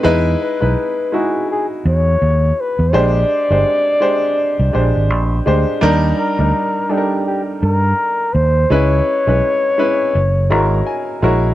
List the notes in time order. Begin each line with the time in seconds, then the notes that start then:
0.03 E2 G#3 D#4 E4 B4
0.42 B4
0.60 B1 G#3 D#4 E4 B4
1.12 G#3 D#4 E4 F#4 G#4
1.51 G#4
1.85 E2 C#5
2.22 D#2
2.60 B4
2.79 E2
2.93 A#1 G#3 D4 G4 C5 D5
3.50 G1 G#3 D4 G4 C5
4.00 G#3 D4 G4 C5
4.59 C2
4.73 A#1 G#3 D4 G4 C5
4.96 G#1
5.10 A#1
5.46 D2 G#3 D4 G4 C5
5.81 D#2 G3 D4 D#4 A#4
6.18 A#4
6.39 D2 G3 D4 D#4 A#4
6.89 G3 D4 D#4 G4 A4
6.98 A#4
7.26 G4
7.63 G2 A#4
8.34 D#2 C5
8.70 C#2 G#3 C#4 E4 B4 C#5
9.27 B1 G#3 C#4 E4 B4
9.78 G#3 C#4 E4 B4
10.15 F#1
10.50 G#1 G#3 E4 F#4 A#4 A#5
10.87 G#5
11.22 A#1 G#3 E4 F#4 A#4 C#5